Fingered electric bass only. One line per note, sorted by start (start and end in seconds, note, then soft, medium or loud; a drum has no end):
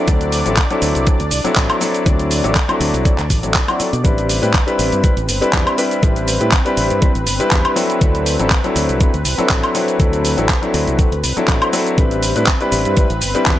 0.08 0.42 D2 loud
0.46 0.55 A1 medium
0.82 0.93 D2 loud
0.95 1.05 C2 loud
1.20 1.30 D2 medium
1.31 1.43 C2 medium
1.45 muted fingered electric bass stroke soft
1.57 1.68 A1 medium
2.06 2.41 D2 loud
2.44 2.54 A1 medium
2.80 2.91 D2 loud
2.93 3.03 C2 medium
3.18 3.32 D2 medium
3.30 3.41 A1 medium
3.43 3.53 A1 medium
3.80 muted fingered electric bass stroke soft
3.93 4.02 B2 medium
4.05 4.39 A1 loud
4.43 4.52 A2 medium
4.79 4.90 A1 medium
4.92 5.02 G2 loud
5.04 muted fingered electric bass stroke soft
5.17 5.26 A1 medium
5.28 5.39 G1 medium
5.54 5.64 E2 medium
6.03 6.37 A1 loud
6.41 6.50 A2 medium
6.77 6.88 A1 loud
6.91 7.00 G2 loud
7.15 7.25 A1 loud
7.27 7.38 G1 medium
7.40 muted fingered electric bass stroke soft
7.52 7.63 E2 medium
8.02 8.36 D2 loud
8.39 8.49 A1 medium
8.76 8.87 D2 loud
8.89 8.99 C2 loud
9.01 muted fingered electric bass stroke soft
9.14 9.23 D2 medium
9.26 9.36 C2 medium
9.39 muted fingered electric bass stroke soft
9.50 9.61 A1 medium
10.00 10.34 D2 loud
10.38 10.47 A1 medium
10.74 10.85 D2 loud
10.87 10.97 C2 loud
11.12 11.21 D2 medium
11.24 11.35 C2 medium
11.37 muted fingered electric bass stroke soft
11.48 11.59 A1 medium
11.98 12.32 A1 loud
12.36 12.45 A2 medium
12.72 12.83 A1 loud
12.86 12.95 G2 loud
12.97 muted fingered electric bass stroke soft
13.10 13.20 A1 loud
13.22 13.33 G1 medium
13.35 muted fingered electric bass stroke soft
13.47 13.58 E2 medium